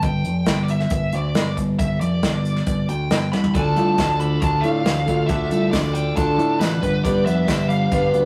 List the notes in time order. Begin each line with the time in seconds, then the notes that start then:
0.02 G1 G5, kick, closed hi-hat
0.24 F1, closed hi-hat
0.46 G1 G5, kick, snare, closed hi-hat
0.63 D5
0.68 E5, closed hi-hat
0.80 snare
0.90 G1, kick, closed hi-hat
1.13 D2 D5, closed hi-hat
1.35 G1, snare, closed hi-hat
1.57 G1, kick, closed hi-hat
1.79 G1 E5, kick, closed hi-hat
2.01 F1 D5, closed hi-hat
2.23 G1, kick, snare, closed hi-hat
2.45 closed hi-hat
2.56 snare
2.67 G1, kick, closed hi-hat
2.89 D2 G5, closed hi-hat
3.11 G1, snare, closed hi-hat
3.32 C2 B5, snare
3.44 floor tom
3.54 D2 D3 D4 F4 A4 D5 A5, kick, closed hi-hat
3.76 C2 A3 D4 F4 A4, closed hi-hat
3.98 D2 D3 D4 F4 A4, kick, snare, closed hi-hat, tambourine
4.20 D3 B5, closed hi-hat
4.40 D2 D3 D4 F4 A4 A5, kick, closed hi-hat
4.61 A2 A3 F5, closed hi-hat
4.85 D2 D3 D4 F4 A4, snare, closed hi-hat, tambourine
5.07 D2 A3 D4 F4 A4, kick, closed hi-hat
5.26 D2 D3 D4 F4 A4 E5, kick, closed hi-hat
5.50 C2 A3 D4 F4 A4, closed hi-hat
5.71 D2 D3 D4 F4 A4 D5, kick, snare, closed hi-hat, tambourine
5.93 D3 G5, closed hi-hat
6.16 D2 D3 D4 F4 A4 A5, kick, closed hi-hat
6.38 A2 A3, closed hi-hat
6.59 A1 D3 D4 F4 A4 B4, snare, closed hi-hat, tambourine
6.82 G1 G2 B3 D4 G4 B4 D5, kick, closed hi-hat
7.04 G1 G2 G3 B3 D4 B4 D5, kick, closed hi-hat
7.25 F1 B3 D4 B4 E5, closed hi-hat
7.47 G1 G3 B3 D4 B4, kick, snare, closed hi-hat, tambourine
7.69 G3 F5, closed hi-hat
7.91 G1 G3 B3 D4 B4, kick, closed hi-hat
8.13 D2 B3, closed hi-hat